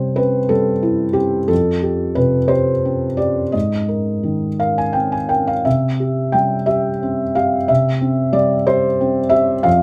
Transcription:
0, 0, Header, 1, 2, 480
1, 0, Start_track
1, 0, Key_signature, 0, "major"
1, 0, Tempo, 668896
1, 1081, Time_signature, 6, 3, 24, 8
1, 2045, Tempo, 695249
1, 4925, Tempo, 660066
1, 6965, End_track
2, 0, Start_track
2, 0, Title_t, "Felt piano"
2, 0, Program_c, 0, 0
2, 0, Control_c, 0, 64, 127
2, 0, Note_on_c, 0, 48, 38
2, 0, Note_on_c, 0, 55, 34
2, 0, Note_on_c, 0, 72, 65
2, 114, Note_on_c, 0, 71, 68
2, 118, Note_on_c, 0, 60, 40
2, 120, Note_off_c, 0, 72, 0
2, 264, Note_off_c, 0, 55, 0
2, 351, Note_on_c, 0, 69, 69
2, 358, Note_on_c, 0, 55, 39
2, 359, Note_off_c, 0, 71, 0
2, 504, Note_off_c, 0, 60, 0
2, 593, Note_on_c, 0, 64, 43
2, 744, Note_off_c, 0, 55, 0
2, 812, Note_on_c, 0, 67, 63
2, 818, Note_on_c, 0, 60, 41
2, 836, Note_off_c, 0, 69, 0
2, 981, Note_off_c, 0, 64, 0
2, 1052, Note_off_c, 0, 48, 0
2, 1061, Note_on_c, 0, 69, 69
2, 1063, Note_on_c, 0, 41, 48
2, 1065, Note_off_c, 0, 67, 0
2, 1068, Note_off_c, 0, 60, 0
2, 1093, Control_c, 0, 64, 0
2, 1214, Control_c, 0, 64, 127
2, 1309, Note_on_c, 0, 67, 38
2, 1545, Note_on_c, 0, 71, 70
2, 1547, Note_off_c, 0, 69, 0
2, 1551, Note_on_c, 0, 48, 38
2, 1698, Note_off_c, 0, 67, 0
2, 1779, Note_on_c, 0, 72, 71
2, 1784, Note_on_c, 0, 67, 38
2, 1793, Note_off_c, 0, 71, 0
2, 1943, Note_off_c, 0, 48, 0
2, 2047, Note_on_c, 0, 60, 33
2, 2181, Note_off_c, 0, 67, 0
2, 2266, Note_on_c, 0, 74, 58
2, 2273, Note_off_c, 0, 72, 0
2, 2273, Note_on_c, 0, 67, 34
2, 2428, Note_off_c, 0, 60, 0
2, 2488, Note_off_c, 0, 41, 0
2, 2509, Note_on_c, 0, 75, 53
2, 2515, Note_off_c, 0, 74, 0
2, 2518, Note_on_c, 0, 44, 35
2, 2519, Note_off_c, 0, 67, 0
2, 2538, Control_c, 0, 64, 0
2, 2634, Control_c, 0, 64, 127
2, 2760, Note_on_c, 0, 70, 29
2, 3001, Note_on_c, 0, 51, 30
2, 3156, Note_off_c, 0, 70, 0
2, 3250, Note_off_c, 0, 75, 0
2, 3250, Note_on_c, 0, 77, 58
2, 3251, Note_on_c, 0, 70, 31
2, 3375, Note_off_c, 0, 77, 0
2, 3378, Note_on_c, 0, 80, 54
2, 3396, Note_off_c, 0, 51, 0
2, 3479, Note_on_c, 0, 79, 56
2, 3492, Note_on_c, 0, 60, 30
2, 3499, Note_off_c, 0, 80, 0
2, 3611, Note_off_c, 0, 79, 0
2, 3613, Note_on_c, 0, 80, 50
2, 3642, Note_off_c, 0, 70, 0
2, 3729, Note_on_c, 0, 79, 51
2, 3734, Note_on_c, 0, 70, 30
2, 3738, Note_off_c, 0, 80, 0
2, 3856, Note_off_c, 0, 79, 0
2, 3857, Note_on_c, 0, 77, 56
2, 3883, Note_off_c, 0, 60, 0
2, 3951, Note_off_c, 0, 44, 0
2, 3977, Note_off_c, 0, 70, 0
2, 3978, Note_off_c, 0, 77, 0
2, 3978, Note_on_c, 0, 76, 60
2, 3982, Note_on_c, 0, 48, 42
2, 3994, Control_c, 0, 64, 0
2, 4128, Control_c, 0, 64, 127
2, 4220, Note_on_c, 0, 67, 32
2, 4444, Note_on_c, 0, 79, 62
2, 4451, Note_off_c, 0, 76, 0
2, 4455, Note_on_c, 0, 55, 32
2, 4597, Note_off_c, 0, 67, 0
2, 4676, Note_on_c, 0, 76, 65
2, 4681, Note_on_c, 0, 67, 35
2, 4685, Note_off_c, 0, 79, 0
2, 4831, Note_off_c, 0, 55, 0
2, 4929, Note_on_c, 0, 60, 35
2, 5067, Note_off_c, 0, 67, 0
2, 5163, Note_off_c, 0, 76, 0
2, 5166, Note_on_c, 0, 77, 67
2, 5172, Note_on_c, 0, 67, 36
2, 5319, Note_off_c, 0, 60, 0
2, 5384, Note_off_c, 0, 48, 0
2, 5405, Note_on_c, 0, 76, 69
2, 5411, Note_off_c, 0, 77, 0
2, 5414, Note_on_c, 0, 48, 44
2, 5426, Control_c, 0, 64, 0
2, 5541, Control_c, 0, 64, 127
2, 5558, Note_off_c, 0, 67, 0
2, 5646, Note_on_c, 0, 60, 36
2, 5874, Note_on_c, 0, 55, 38
2, 5876, Note_on_c, 0, 74, 71
2, 5884, Note_off_c, 0, 76, 0
2, 6026, Note_off_c, 0, 60, 0
2, 6118, Note_off_c, 0, 74, 0
2, 6121, Note_on_c, 0, 72, 80
2, 6122, Note_on_c, 0, 67, 44
2, 6259, Note_off_c, 0, 55, 0
2, 6369, Note_on_c, 0, 60, 45
2, 6504, Note_off_c, 0, 67, 0
2, 6578, Note_on_c, 0, 76, 81
2, 6587, Note_on_c, 0, 67, 44
2, 6600, Note_off_c, 0, 72, 0
2, 6750, Note_off_c, 0, 60, 0
2, 6813, Note_off_c, 0, 48, 0
2, 6823, Note_on_c, 0, 77, 81
2, 6831, Note_off_c, 0, 76, 0
2, 6831, Note_on_c, 0, 41, 55
2, 6835, Note_off_c, 0, 67, 0
2, 6857, Control_c, 0, 64, 0
2, 6965, Note_off_c, 0, 41, 0
2, 6965, Note_off_c, 0, 77, 0
2, 6965, End_track
0, 0, End_of_file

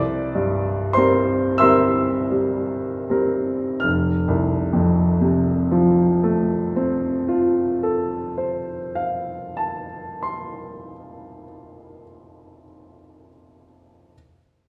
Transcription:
0, 0, Header, 1, 2, 480
1, 0, Start_track
1, 0, Key_signature, -1, "major"
1, 0, Tempo, 1197605
1, 386, Tempo, 1351351
1, 866, Tempo, 1522843
1, 1346, Time_signature, 12, 3, 24, 8
1, 1346, Tempo, 1348315
1, 2306, Tempo, 1290323
1, 3266, Tempo, 1385681
1, 5194, End_track
2, 0, Start_track
2, 0, Title_t, "Grand piano"
2, 0, Program_c, 0, 0
2, 0, Control_c, 0, 64, 127
2, 0, Note_on_c, 0, 36, 50
2, 0, Note_on_c, 0, 74, 52
2, 0, Note_on_c, 0, 86, 74
2, 141, Note_on_c, 0, 43, 40
2, 364, Note_off_c, 0, 74, 0
2, 374, Note_on_c, 0, 84, 64
2, 378, Note_on_c, 0, 72, 49
2, 379, Note_off_c, 0, 86, 0
2, 387, Note_on_c, 0, 55, 40
2, 389, Note_on_c, 0, 60, 40
2, 390, Note_on_c, 0, 70, 39
2, 521, Note_off_c, 0, 43, 0
2, 598, Note_off_c, 0, 72, 0
2, 602, Note_off_c, 0, 55, 0
2, 603, Note_off_c, 0, 60, 0
2, 603, Note_off_c, 0, 70, 0
2, 605, Note_off_c, 0, 84, 0
2, 605, Note_on_c, 0, 88, 68
2, 610, Note_on_c, 0, 76, 49
2, 610, Note_on_c, 0, 84, 50
2, 617, Note_on_c, 0, 55, 39
2, 619, Note_on_c, 0, 70, 40
2, 620, Note_on_c, 0, 60, 38
2, 852, Note_off_c, 0, 55, 0
2, 853, Note_off_c, 0, 70, 0
2, 854, Note_off_c, 0, 60, 0
2, 866, Note_on_c, 0, 55, 37
2, 1109, Note_off_c, 0, 55, 0
2, 1113, Note_on_c, 0, 55, 34
2, 1113, Note_on_c, 0, 60, 35
2, 1117, Note_on_c, 0, 70, 36
2, 1331, Note_off_c, 0, 76, 0
2, 1331, Note_off_c, 0, 84, 0
2, 1332, Note_off_c, 0, 36, 0
2, 1333, Note_off_c, 0, 55, 0
2, 1333, Note_off_c, 0, 60, 0
2, 1334, Note_on_c, 0, 89, 46
2, 1335, Note_off_c, 0, 70, 0
2, 1341, Note_off_c, 0, 88, 0
2, 1347, Note_on_c, 0, 29, 44
2, 1355, Control_c, 0, 64, 0
2, 1433, Control_c, 0, 64, 127
2, 1503, Note_on_c, 0, 36, 43
2, 1664, Note_on_c, 0, 41, 39
2, 1835, Note_on_c, 0, 48, 41
2, 2014, Note_on_c, 0, 53, 42
2, 2199, Note_on_c, 0, 57, 43
2, 2391, Note_on_c, 0, 60, 43
2, 2430, Note_off_c, 0, 89, 0
2, 2446, Note_off_c, 0, 29, 0
2, 2586, Note_on_c, 0, 65, 36
2, 2609, Note_off_c, 0, 36, 0
2, 2777, Note_off_c, 0, 41, 0
2, 2789, Note_on_c, 0, 69, 37
2, 2956, Note_off_c, 0, 48, 0
2, 2991, Note_on_c, 0, 72, 33
2, 3143, Note_off_c, 0, 53, 0
2, 3206, Note_on_c, 0, 77, 39
2, 3331, Note_off_c, 0, 57, 0
2, 3423, Note_on_c, 0, 81, 36
2, 3515, Note_off_c, 0, 60, 0
2, 3651, Note_on_c, 0, 84, 36
2, 3696, Note_off_c, 0, 65, 0
2, 3885, Note_off_c, 0, 69, 0
2, 4074, Note_off_c, 0, 72, 0
2, 4274, Note_off_c, 0, 77, 0
2, 4486, Note_off_c, 0, 81, 0
2, 4714, Note_off_c, 0, 84, 0
2, 5008, Control_c, 0, 64, 0
2, 5194, End_track
0, 0, End_of_file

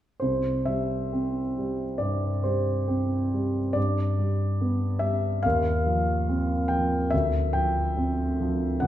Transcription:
0, 0, Header, 1, 2, 480
1, 0, Start_track
1, 0, Key_signature, 0, "major"
1, 0, Tempo, 907716
1, 121, Time_signature, 4, 2, 24, 8
1, 598, Tempo, 877193
1, 2038, Tempo, 842697
1, 4947, End_track
2, 0, Start_track
2, 0, Title_t, "Grand piano"
2, 0, Program_c, 0, 0
2, 104, Note_on_c, 0, 72, 50
2, 116, Note_on_c, 0, 36, 34
2, 213, Control_c, 0, 64, 127
2, 346, Note_on_c, 0, 76, 55
2, 354, Note_off_c, 0, 72, 0
2, 361, Note_on_c, 0, 55, 26
2, 596, Note_on_c, 0, 60, 29
2, 743, Note_off_c, 0, 55, 0
2, 843, Note_on_c, 0, 55, 29
2, 984, Note_off_c, 0, 60, 0
2, 1057, Note_off_c, 0, 36, 0
2, 1063, Note_on_c, 0, 74, 56
2, 1073, Note_off_c, 0, 76, 0
2, 1076, Note_on_c, 0, 43, 31
2, 1226, Note_off_c, 0, 55, 0
2, 1312, Note_off_c, 0, 74, 0
2, 1312, Note_on_c, 0, 72, 50
2, 1319, Note_on_c, 0, 55, 26
2, 1462, Note_off_c, 0, 43, 0
2, 1554, Note_on_c, 0, 60, 31
2, 1704, Note_off_c, 0, 55, 0
2, 1804, Note_on_c, 0, 55, 30
2, 1941, Note_off_c, 0, 60, 0
2, 2021, Note_on_c, 0, 74, 61
2, 2034, Note_on_c, 0, 43, 36
2, 2035, Note_off_c, 0, 72, 0
2, 2041, Note_off_c, 0, 55, 0
2, 2049, Control_c, 0, 64, 0
2, 2149, Control_c, 0, 64, 127
2, 2279, Note_on_c, 0, 55, 28
2, 2521, Note_on_c, 0, 59, 30
2, 2664, Note_off_c, 0, 55, 0
2, 2739, Note_on_c, 0, 76, 63
2, 2749, Note_on_c, 0, 55, 31
2, 2752, Note_off_c, 0, 74, 0
2, 2899, Note_off_c, 0, 59, 0
2, 2972, Note_off_c, 0, 43, 0
2, 2986, Note_off_c, 0, 76, 0
2, 2986, Note_on_c, 0, 77, 69
2, 2991, Note_off_c, 0, 55, 0
2, 3004, Note_on_c, 0, 39, 43
2, 3005, Control_c, 0, 64, 0
2, 3087, Control_c, 0, 64, 127
2, 3235, Note_on_c, 0, 53, 31
2, 3476, Note_on_c, 0, 60, 34
2, 3618, Note_off_c, 0, 53, 0
2, 3701, Note_on_c, 0, 79, 67
2, 3708, Note_off_c, 0, 77, 0
2, 3714, Note_on_c, 0, 53, 32
2, 3857, Note_off_c, 0, 60, 0
2, 3935, Note_off_c, 0, 39, 0
2, 3942, Note_on_c, 0, 76, 67
2, 3948, Note_off_c, 0, 79, 0
2, 3954, Note_off_c, 0, 53, 0
2, 3960, Note_on_c, 0, 38, 41
2, 3963, Control_c, 0, 64, 0
2, 4052, Control_c, 0, 64, 127
2, 4185, Note_on_c, 0, 79, 68
2, 4192, Note_off_c, 0, 76, 0
2, 4195, Note_on_c, 0, 53, 33
2, 4434, Note_on_c, 0, 60, 35
2, 4584, Note_off_c, 0, 53, 0
2, 4680, Note_on_c, 0, 53, 37
2, 4820, Note_off_c, 0, 60, 0
2, 4900, Note_off_c, 0, 38, 0
2, 4908, Note_on_c, 0, 78, 63
2, 4913, Note_off_c, 0, 79, 0
2, 4918, Note_on_c, 0, 37, 47
2, 4919, Note_off_c, 0, 53, 0
2, 4928, Control_c, 0, 64, 0
2, 4947, Note_off_c, 0, 37, 0
2, 4947, Note_off_c, 0, 78, 0
2, 4947, End_track
0, 0, End_of_file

